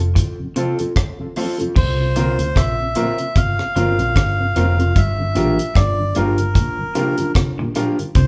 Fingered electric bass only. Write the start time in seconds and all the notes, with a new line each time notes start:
Already playing: F1
1.77 C2
2.39 D2
2.56 A#1
3.36 G1
3.76 G1
3.99 A#1
4.16 G1
4.56 F1
4.96 G1
5.36 A1
5.76 G1
6.17 G1
8.16 C2